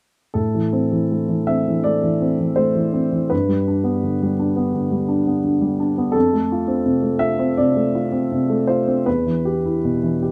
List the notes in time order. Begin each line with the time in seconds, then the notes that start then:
0.34 A2 A4
0.55 E3
0.73 C4
0.92 E3
1.11 A3
1.29 E3
1.47 C4 E5
1.68 E3
1.84 A3 D5
2.03 E3
2.22 C4
2.39 E3
2.56 A3 C5
2.75 E3
2.93 C4
3.12 E3
3.30 G2 B4
3.49 G3
3.68 D4
3.84 B3
4.03 D3
4.22 G3
4.39 D4
4.56 B3
4.74 D3
4.91 G3
5.08 D4
5.27 B3
5.44 D3
5.61 G3
5.80 D4
5.98 B3
6.12 F2 A4
6.33 A3
6.52 F4
6.68 C4
6.86 C3
7.03 A3
7.19 F4 E5
7.39 C4
7.57 C3 D5
7.76 A3
7.95 F4
8.12 C4
8.32 C3
8.50 A3
8.67 F4 C5
8.88 C4
9.06 E2 B4
9.26 E3
9.45 G4
9.65 E4
9.85 B2
10.03 E3
10.22 G4